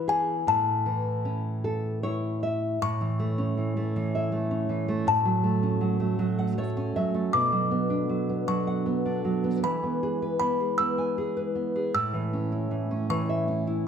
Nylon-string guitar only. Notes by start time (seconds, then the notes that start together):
Already playing: E3 B3
0.08 G#4
0.47 A2
0.86 E3
1.25 C#4
1.64 A4
2.03 E4 C#5
2.43 E5
2.82 A2
3.01 E3
3.19 A3
3.38 C#4
3.58 E3
3.77 A3
3.96 E3
4.15 E5
4.32 A3
4.51 C#4
4.69 E3
4.88 A3
5.07 A2
5.25 F#3
5.44 A3
5.63 C#4
5.81 F#3
6.00 A3
6.19 F#3
6.39 F#5
6.58 A3 C#5
6.77 C#4
6.96 F#3 E5
7.14 A3
7.34 B2
7.52 F#3
7.71 B3
7.90 D4
8.09 F#3
8.29 B3
8.48 F#3
8.67 F#5
8.86 B3
9.06 D4
9.25 F#3
9.44 B3
9.63 E3
9.83 B3
10.03 G#4
10.22 B4
10.41 B3
10.60 G#4
10.80 B3
10.98 G#5
11.18 G#4
11.37 B4
11.55 B3
11.76 G#4
11.94 A2
12.13 E3
12.33 C#4
12.52 E4
12.71 E3
12.91 C#4
13.10 E3
13.29 E5
13.48 C#4
13.67 E4